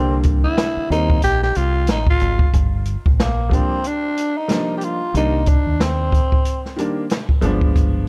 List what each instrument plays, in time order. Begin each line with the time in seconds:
Already playing: fingered electric bass C2, upright piano D3 G3 A#3 D4, tenor saxophone C4
0.23 kick, closed hi-hat
0.44 tenor saxophone E4
0.58 snare, closed hi-hat
0.77 muted fingered electric bass stroke
0.90 fingered electric bass D#2, upright piano D#3 G3 A#3 C4, tenor saxophone D#4, closed hi-hat
1.10 kick
1.22 fingered electric bass A#1, tenor saxophone G4, closed hi-hat
1.43 tenor saxophone G4, snare
1.55 fingered electric bass C2, tenor saxophone F4, closed hi-hat
1.87 fingered electric bass A1, tenor saxophone D#4, snare, closed hi-hat
2.07 tenor saxophone F4, kick
2.20 fingered electric bass G#1, closed hi-hat
2.39 kick
2.53 fingered electric bass G1, kick, closed hi-hat
2.85 closed hi-hat
3.06 fingered electric bass A#1, kick
3.20 tenor saxophone A#3, snare, closed hi-hat
3.49 upright piano F3 G3 A#3 D4, kick, closed hi-hat
3.54 tenor saxophone C4
3.84 tenor saxophone D4, closed hi-hat
4.17 closed hi-hat
4.37 tenor saxophone D#4
4.48 upright piano F3 G3 A#3 D4, snare, closed hi-hat
4.77 tenor saxophone G4, closed hi-hat
4.84 tenor saxophone F4
5.14 fingered electric bass C2, upright piano D#3 G3 A#3 D4, tenor saxophone D#4, closed hi-hat
5.46 tenor saxophone D4, kick, closed hi-hat
5.66 fingered electric bass D#2
5.80 tenor saxophone C4, snare, closed hi-hat
6.12 kick, closed hi-hat
6.32 kick
6.45 closed hi-hat
6.65 snare
6.76 upright piano D#3 G3 A#3 D4, closed hi-hat
7.10 snare, closed hi-hat
7.29 kick
7.41 fingered electric bass G1, upright piano F3 G#3 B3 D4, closed hi-hat
7.61 kick
7.76 kick, closed hi-hat